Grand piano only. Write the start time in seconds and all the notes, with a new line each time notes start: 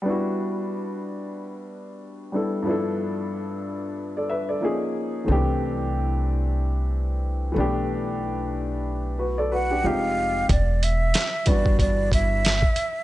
0.02 G3 B3 D4
0.08 E4 F#4
2.32 G3 B3 D4 E4 A4
2.62 G2 F3 B3
2.67 D4 E4 A4
4.17 A4 D5
4.30 B4 E5
4.49 A4 D5
4.61 F3 A#3 C#4 D#4
4.65 G#4
5.24 D#3 A3 C4
5.30 E3 D4 G4
7.52 E3 A3
7.56 B3 D4
7.60 G4
9.19 F#4 B4
9.38 A4 D5
9.52 F#4 B4
9.71 D4 G4
9.82 F3 G#3 C4 D#4
9.87 G4
11.46 E3 G3 B3 D4 F#4